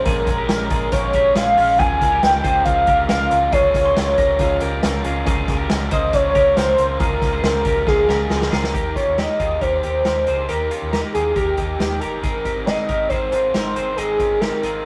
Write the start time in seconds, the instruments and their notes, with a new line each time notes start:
0.04 fingered electric bass A#1, overdriven electric guitar A#2 F3 G#3 C#4 G#4, clean electric guitar F4 G#4, soft synth lead A#4, kick, closed hi-hat
0.27 fingered electric bass A#1, overdriven electric guitar C#4 G#4, kick, closed hi-hat
0.31 overdriven electric guitar G#3
0.38 clean electric guitar G4 A#4
0.48 fingered electric bass A#1, overdriven electric guitar A#2 F3 G#3 C#4 G#4, soft synth lead A#4, snare, closed hi-hat
0.70 fingered electric bass A#1, overdriven electric guitar G#3 C#4 G#4, clean electric guitar F4 G#4, kick, closed hi-hat
0.92 fingered electric bass A#1, overdriven electric guitar F3 G#3 C#4 G#4, clean electric guitar F4 A#4, soft synth lead C#5, kick, closed hi-hat
1.13 fingered electric bass A#1, overdriven electric guitar G#3 C#4 G#4, clean electric guitar G4 A#4, kick, closed hi-hat
1.34 fingered electric bass A#1, overdriven electric guitar A#2 F3 G#3 C#4 G#4, clean electric guitar F4 G#4, soft synth lead F5, snare, closed hi-hat
1.56 fingered electric bass A#1, overdriven electric guitar G#3 C#4 G#4, clean electric guitar C#4 F4, open hi-hat
1.78 fingered electric bass C#2, overdriven electric guitar C#3 F3 G#3 F4 A#4, reed electric piano C#4 F4 A#4, clean electric guitar F4 G#4, soft synth lead G#5, kick, closed hi-hat
1.99 fingered electric bass C#2, overdriven electric guitar G#3 F4 A#4, reed electric piano C#4 F4 A#4, kick, closed hi-hat
2.12 clean electric guitar G4 A#4
2.21 fingered electric bass C#2, overdriven electric guitar C#3 F3 G#3 F4 A#4, reed electric piano C#4 F4 A#4, soft synth lead G5, snare, closed hi-hat
2.43 fingered electric bass C#2, overdriven electric guitar G#3 F4 A#4, reed electric piano C#4 F4 A#4, clean electric guitar G#4 C5, kick, closed hi-hat
2.64 fingered electric bass C#2, overdriven electric guitar F3 G#3 F4 A#4, reed electric piano C#4 F4 A#4, soft synth lead F5, kick, closed hi-hat
2.86 fingered electric bass C#2, overdriven electric guitar G#3 F4 A#4, reed electric piano C#4 F4, clean electric guitar G4 A#4, kick, closed hi-hat
3.08 fingered electric bass C#2, overdriven electric guitar C#3 F3 G#3 F4 A#4, reed electric piano C#4 F4 A#4, clean electric guitar F4 A#4, snare, closed hi-hat
3.30 fingered electric bass C#2, overdriven electric guitar G#3 F4 A#4, reed electric piano C#4 F4 A#4, closed hi-hat
3.51 fingered electric bass C#2, overdriven electric guitar C#3 F3 G#3 F4 A#4, reed electric piano C#4 F4 A#4, clean electric guitar F4 G#4, soft synth lead C#5, kick, closed hi-hat
3.73 fingered electric bass C#2, overdriven electric guitar G#3 F4 A#4, reed electric piano C#4 F4 A#4, soft synth lead C#5, kick, closed hi-hat
3.85 clean electric guitar G#4 C6
3.95 fingered electric bass C#2, overdriven electric guitar C#3 F3 G#3 F4 A#4, reed electric piano C#4 F4, snare, closed hi-hat
4.17 fingered electric bass C#2, overdriven electric guitar G#3 F4 A#4, reed electric piano C#4 C5, clean electric guitar G4 A#4, kick, closed hi-hat
4.39 fingered electric bass C#2, overdriven electric guitar F3 G#3 F4 A#4, reed electric piano C#4 F4 A#4, clean electric guitar F4 G#4, kick, closed hi-hat
4.60 fingered electric bass C#2, overdriven electric guitar G#3 F4 A#4, reed electric piano C#4 F4 A#4, clean electric guitar G4 A#4, closed hi-hat
4.83 fingered electric bass C#2, overdriven electric guitar C#3 F3 G#3 F4 A#4, reed electric piano C#4 F4 A#4, clean electric guitar F4 A#4, snare, closed hi-hat
5.04 fingered electric bass C#2, overdriven electric guitar G#3 F4 A#4, reed electric piano C#4 F4 A#4, clean electric guitar F4 G#4, closed hi-hat
5.26 fingered electric bass C#2, overdriven electric guitar C#3 F3 G#3 F4 A#4, reed electric piano C#4 G#4 A#4, clean electric guitar F4 G#4, kick, closed hi-hat
5.48 fingered electric bass C#2, reed electric piano C#4 G#4 A#4, overdriven electric guitar F4 A#4, kick, snare, closed hi-hat
5.52 overdriven electric guitar G#3
5.59 clean electric guitar G4 A#4
5.69 fingered electric bass C#2, overdriven electric guitar C#3 F3 G#3 F4 A#4, reed electric piano C#4 G#4 A#4, snare, closed hi-hat
5.91 fingered electric bass C#2, reed electric piano C#4 G#4 A#4, overdriven electric guitar F4 A#4, clean electric guitar G#4 C5, soft synth lead D#5, kick, closed hi-hat
5.95 overdriven electric guitar G#3
6.13 fingered electric bass C#2, overdriven electric guitar F3 G#3 F4 A#4, reed electric piano C#4 G#4 C#5, soft synth lead C#5, kick, closed hi-hat
6.34 fingered electric bass C#2, overdriven electric guitar G#3 F4 A#4, reed electric piano C#4 G#4 A#4, clean electric guitar G4 A#4, kick, closed hi-hat
6.57 fingered electric bass C#2, overdriven electric guitar C#3 F3 G#3 F4 A#4, reed electric piano C#4 G#4 C#5, clean electric guitar F4 A#4, soft synth lead C5, snare, closed hi-hat
6.78 fingered electric bass C#2, overdriven electric guitar G#3 F4 A#4, reed electric piano C#4 G#4 A#4, closed hi-hat
6.99 fingered electric bass C#2, overdriven electric guitar C#3 F3 G#3 F4 A#4, reed electric piano C#4 G#4 A#4, clean electric guitar F4 G#4, soft synth lead A#4, kick, closed hi-hat
7.21 fingered electric bass C#2, overdriven electric guitar G#3 F4 A#4, reed electric piano C#4 G#4 C5, kick, snare, closed hi-hat
7.33 clean electric guitar G#4 C5
7.43 fingered electric bass C#2, overdriven electric guitar C#3 F3 G#3 F4 A#4, reed electric piano C#4 G#4 A#4, soft synth lead A#4, snare, closed hi-hat
7.65 fingered electric bass C#2, overdriven electric guitar G#3 F4 A#4, reed electric piano C#4 G#4 A#4, clean electric guitar G4 A#4, kick, closed hi-hat
7.86 fingered electric bass C#2, overdriven electric guitar F3 G#3 F4 A#4, reed electric piano C#4 G#4 A#4, clean electric guitar F4 G#4, soft synth lead G#4, kick, snare
8.08 fingered electric bass C#2, overdriven electric guitar G#3 F4 A#4, reed electric piano C#4 G#4 A#4, clean electric guitar G4 A#4, snare
8.30 fingered electric bass C#2, overdriven electric guitar C#3 F3 G#3 F4 A#4, reed electric piano C#4 G#4 A#4, clean electric guitar F4 A#4, snare
8.42 snare
8.52 fingered electric bass C#2, overdriven electric guitar G#3 F4 A#4, reed electric piano C#4 G#4 C5, clean electric guitar F4 G#4, soft synth lead A#4, snare
8.64 snare
8.74 fingered electric bass D#2, overdriven electric guitar D#3 D#4 G4 A#4, clean electric guitar D#4 G4, soft synth lead A#4, kick, closed hi-hat
8.95 clean electric guitar C#4 F4, overdriven electric guitar D#4 G4 A#4, soft synth lead C#5, kick, closed hi-hat
9.07 fingered electric bass D#2
9.17 overdriven electric guitar D#3 D#4 G4 A#4, clean electric guitar D#4 G4, soft synth lead D#5, snare, closed hi-hat
9.39 fingered electric bass D#2, overdriven electric guitar D#4 G4 A#4, clean electric guitar F4 G#4, kick, closed hi-hat
9.61 fingered electric bass D#2, overdriven electric guitar D#3 D#4 G4 A#4, clean electric guitar G4 A#4, soft synth lead C5, kick, closed hi-hat
9.82 fingered electric bass D#2, clean electric guitar D#4 G4, overdriven electric guitar D#4 G4 A#4, closed hi-hat
10.04 fingered electric bass D#2, overdriven electric guitar D#3 D#4 G4 A#4, clean electric guitar G4 A#4, snare, closed hi-hat
10.27 fingered electric bass C#2, overdriven electric guitar D#4 G4 A#4, clean electric guitar G#4 C5, closed hi-hat
10.49 fingered electric bass D#2, overdriven electric guitar D#3 D#4 G4 A#4, clean electric guitar D#4 G4, soft synth lead A#4, closed hi-hat
10.70 clean electric guitar C#4 F4, overdriven electric guitar D#4 G4 A#4, closed hi-hat
10.82 fingered electric bass D#2
10.91 overdriven electric guitar D#3 D#4 G4 A#4, clean electric guitar D#4 G4, soft synth lead A#4, snare, closed hi-hat
11.13 fingered electric bass D#2, overdriven electric guitar D#4 G4 A#4, clean electric guitar F4 G#4, soft synth lead G#4, closed hi-hat
11.35 fingered electric bass D#2, overdriven electric guitar D#3 D#4 G4 A#4, soft synth lead G4, clean electric guitar G4 A#4, kick, closed hi-hat
11.57 fingered electric bass D#2, clean electric guitar D#4 G4, overdriven electric guitar D#4 G4 A#4, kick, closed hi-hat
11.78 fingered electric bass D#2, overdriven electric guitar D#3 D#4 G4 A#4, snare, closed hi-hat
12.00 fingered electric bass G1, overdriven electric guitar D#4 G4 A#4, clean electric guitar G4 A#4, soft synth lead A#4, closed hi-hat
12.22 fingered electric bass G#1, overdriven electric guitar G#3 C4 D#4 A#4, clean electric guitar D#4 G#4, soft synth lead A#4, kick, closed hi-hat
12.45 overdriven electric guitar C4 D#4 A#4, clean electric guitar D#4 G4, kick, closed hi-hat
12.57 fingered electric bass G#1
12.66 overdriven electric guitar G#3 C4 D#4 A#4, clean electric guitar D#4 G#4, soft synth lead D#5, snare, closed hi-hat
12.89 fingered electric bass G#1, overdriven electric guitar C4 D#4 A#4, clean electric guitar G4 A#4, kick, closed hi-hat
13.09 fingered electric bass G#1, overdriven electric guitar G#3 C4 D#4 A#4, clean electric guitar G#4 C5, soft synth lead C5, kick, closed hi-hat
13.32 fingered electric bass G#1, overdriven electric guitar C4 D#4 A#4, clean electric guitar F4 G#4, closed hi-hat
13.54 fingered electric bass G#1, overdriven electric guitar G#3 C4 D#4 A#4, clean electric guitar D#4 A#4, snare, closed hi-hat
13.76 fingered electric bass G1, overdriven electric guitar C4 D#4 A#4, clean electric guitar G#4 C5, closed hi-hat
13.96 fingered electric bass G#1, overdriven electric guitar G#3 C4 D#4 A#4, clean electric guitar D#4 G#4, soft synth lead G#4, closed hi-hat
14.20 overdriven electric guitar C4 D#4 A#4, clean electric guitar C#4 F4, kick, closed hi-hat
14.31 fingered electric bass G#1
14.40 overdriven electric guitar G#3 C4 D#4, clean electric guitar D#4 G4, soft synth lead A#4, snare, closed hi-hat
14.44 overdriven electric guitar A#4
14.63 fingered electric bass G#1, overdriven electric guitar C4 D#4 A#4, clean electric guitar F4 G#4, closed hi-hat